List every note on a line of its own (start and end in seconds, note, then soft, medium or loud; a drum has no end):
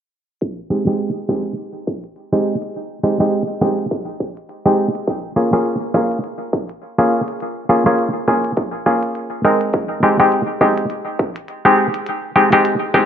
0.41 kick loud
0.41 closed hi-hat soft
0.70 0.85 G#3 medium
0.70 0.85 C4 medium
0.70 0.85 D#4 medium
0.70 0.85 G4 medium
0.87 1.09 G#3 medium
0.87 1.09 C4 medium
0.87 1.09 D#4 medium
0.87 1.09 G4 medium
0.87 closed hi-hat medium
1.00 closed hi-hat soft
1.29 1.53 G#3 medium
1.29 1.53 C4 medium
1.29 1.53 D#4 medium
1.29 1.53 G4 medium
1.29 kick medium
1.46 closed hi-hat medium
1.58 closed hi-hat soft
1.87 kick medium
2.04 closed hi-hat medium
2.16 closed hi-hat soft
2.33 2.55 G#3 medium
2.33 2.55 C4 medium
2.33 2.55 D#4 medium
2.33 2.55 G4 medium
2.62 closed hi-hat medium
2.75 closed hi-hat soft
3.03 3.18 G#3 medium
3.03 3.18 C4 medium
3.03 3.18 D#4 medium
3.03 3.18 G4 medium
3.20 3.42 G#3 medium
3.20 3.42 C4 medium
3.20 3.42 D#4 medium
3.20 3.42 G4 medium
3.20 closed hi-hat medium
3.33 closed hi-hat soft
3.61 3.86 G#3 medium
3.61 3.86 C4 medium
3.61 3.86 D#4 medium
3.61 3.86 G4 medium
3.61 kick loud
3.79 closed hi-hat medium
3.91 kick loud
3.91 closed hi-hat medium
4.20 kick medium
4.37 closed hi-hat medium
4.49 closed hi-hat soft
4.66 4.88 G#3 medium
4.66 4.88 C4 medium
4.66 4.88 D#4 medium
4.66 4.88 G4 medium
4.95 closed hi-hat medium
5.08 kick loud
5.08 closed hi-hat soft
5.36 5.51 A#3 medium
5.36 5.51 C#4 medium
5.36 5.51 F4 medium
5.36 5.51 G#4 medium
5.53 5.75 A#3 medium
5.53 5.75 C#4 medium
5.53 5.75 F4 medium
5.53 5.75 G#4 medium
5.53 closed hi-hat medium
5.66 closed hi-hat soft
5.94 6.19 A#3 medium
5.94 6.19 C#4 medium
5.94 6.19 F4 medium
5.94 6.19 G#4 medium
5.94 kick loud
6.12 closed hi-hat medium
6.24 closed hi-hat medium
6.53 kick loud
6.69 closed hi-hat medium
6.98 7.21 A#3 medium
6.98 7.21 C#4 medium
6.98 7.21 F4 medium
6.98 7.21 G#4 medium
7.28 closed hi-hat medium
7.40 closed hi-hat soft
7.69 7.84 A#3 medium
7.69 7.84 C#4 medium
7.69 7.84 F4 medium
7.69 7.84 G#4 medium
7.86 8.08 A#3 medium
7.86 8.08 C#4 medium
7.86 8.08 F4 medium
7.86 8.08 G#4 medium
7.86 closed hi-hat medium
7.99 closed hi-hat soft
8.28 8.52 A#3 medium
8.28 8.52 C#4 medium
8.28 8.52 F4 medium
8.28 8.52 G#4 medium
8.28 kick loud
8.44 closed hi-hat medium
8.57 kick loud
8.57 closed hi-hat soft
8.86 9.42 A#3 medium
8.86 9.42 C#4 medium
8.86 9.41 F4 medium
8.86 9.42 G#4 medium
8.86 kick medium
9.03 closed hi-hat medium
9.15 closed hi-hat soft
9.45 10.00 G#3 medium
9.45 10.00 C4 medium
9.45 10.00 D#4 medium
9.45 10.00 A#4 medium
9.61 closed hi-hat medium
9.73 kick loud
9.73 closed hi-hat soft
10.03 10.17 G#3 medium
10.03 10.17 C4 medium
10.03 10.17 D#4 medium
10.03 10.17 G4 medium
10.20 10.42 G#3 medium
10.20 10.42 C4 medium
10.20 10.42 D#4 medium
10.20 10.42 G4 medium
10.20 closed hi-hat medium
10.32 closed hi-hat soft
10.61 10.85 G#3 medium
10.61 10.85 C4 medium
10.61 10.85 D#4 medium
10.61 10.85 G4 medium
10.61 kick loud
10.78 closed hi-hat medium
10.90 closed hi-hat soft
11.19 kick medium
11.36 closed hi-hat medium
11.48 closed hi-hat soft
11.65 11.87 G#3 medium
11.65 11.87 C4 medium
11.65 11.87 D#4 medium
11.65 11.87 G4 loud
11.94 closed hi-hat medium
12.06 closed hi-hat soft
12.36 12.50 G#3 medium
12.36 12.50 C4 medium
12.36 12.50 D#4 medium
12.36 12.50 G4 medium
12.52 12.75 G#3 medium
12.52 12.75 C4 medium
12.52 12.75 D#4 medium
12.52 12.75 G4 medium
12.52 closed hi-hat medium
12.65 closed hi-hat soft
12.94 13.05 G#3 medium
12.94 13.05 C4 medium
12.94 13.05 D#4 medium
12.94 13.05 G4 medium
12.94 kick medium